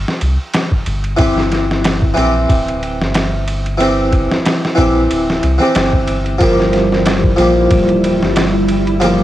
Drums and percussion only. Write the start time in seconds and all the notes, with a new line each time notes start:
0.08 snare
0.21 ride
0.54 snare, ride
0.72 kick
0.86 ride
1.04 ride
1.18 kick, ride
1.38 snare
1.52 snare, ride
1.71 snare
1.84 snare, ride
2.02 kick
2.17 ride
2.49 kick, ride
2.68 ride
2.83 ride
3.02 snare
3.14 snare, ride
3.48 ride
3.66 ride
3.80 ride
4.12 kick, ride
4.31 snare
4.45 snare, ride
4.65 snare
4.78 kick, ride
5.11 ride
5.30 snare
5.43 ride
5.75 snare, ride
5.93 kick
6.08 ride
6.26 ride
6.41 kick, ride
6.60 snare
6.73 snare, ride
6.92 snare
7.06 snare, ride
7.24 kick
7.38 ride
7.71 kick, ride
7.89 ride
8.04 ride
8.23 snare
8.36 snare, ride
8.68 ride
8.87 ride
9.01 ride